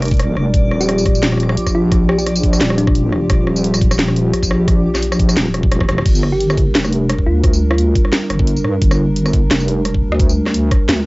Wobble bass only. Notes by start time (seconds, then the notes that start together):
Already playing: F1
0.37 F1
0.54 D#1
1.57 A#1
2.61 D#1
3.30 D#1
4.33 A#1
5.37 D#1
6.06 G1
6.75 F1
7.26 D2
8.30 G1
8.64 G2
8.82 G1
9.51 F1
10.02 D2
10.89 D2